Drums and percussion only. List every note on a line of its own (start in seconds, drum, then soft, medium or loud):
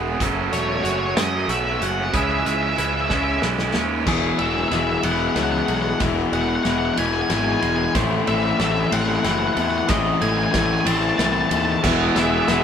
0.20 kick medium
0.20 closed hi-hat medium
0.53 closed hi-hat medium
0.85 closed hi-hat medium
1.17 snare loud
1.17 closed hi-hat medium
1.49 closed hi-hat medium
1.82 closed hi-hat medium
2.14 kick loud
2.14 closed hi-hat medium
2.46 closed hi-hat medium
2.78 closed hi-hat medium
3.10 kick medium
3.10 snare medium
3.42 snare medium
3.59 snare medium
3.74 snare medium
4.07 kick medium
4.07 snare soft
4.07 crash loud
4.39 ride medium
4.71 snare medium
4.71 ride medium
5.03 ride medium
5.36 snare medium
5.36 ride medium
5.68 ride medium
6.00 kick loud
6.00 snare soft
6.00 ride medium
6.33 ride medium
6.65 snare medium
6.65 ride medium
6.97 ride medium
7.30 snare medium
7.30 ride medium
7.62 ride medium
7.95 kick loud
7.95 snare medium
7.95 ride medium
8.27 ride medium
8.60 snare medium
8.60 ride medium
8.92 ride medium
9.24 snare medium
9.24 ride medium
9.57 ride medium
9.88 kick loud
9.88 snare medium
9.88 ride medium
10.22 ride medium
10.54 kick medium
10.54 snare medium
10.54 ride medium
10.86 ride loud
11.19 snare medium
11.19 ride medium
11.51 ride medium
11.84 kick loud
11.84 snare medium
11.84 crash loud
12.16 snare medium
12.16 ride medium
12.48 snare medium
12.48 ride medium